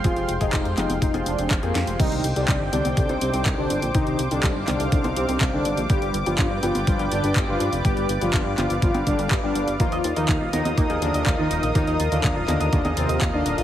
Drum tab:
CC |----------------|x---------------|----------------|----------------|
HH |xxxxxxxxxxxxxxxx|xxxxx-xxxxxxx-xx|xxxxx-xxxxxxx-xx|xxxxx-xxxxxxx-xx|
CP |----x-x-----x---|----x-------x---|----x-x-----x---|----x-------x---|
SD |--------------o-|----------------|----------------|----------------|
CG |------oo-o------|------oo--------|------o--o------|------oo--------|
BD |o--oo---o---o---|o---o---o---o---|o---o---o---o---|o---o---o---o---|

CC |----------------|----------------|----------------|
HH |xxxxx-xxxxxxx-xx|xxxxx-xxxxxxx-xx|xxxxx-xxxxxxx-xx|
CP |----x-x-----x---|----x-------x---|----x-x-----x---|
SD |----------------|----------------|----------------|
CG |------o--o------|------oo--------|------o--o------|
BD |o---o---o-o-o---|o---o---o---o---|o---o---o---o---|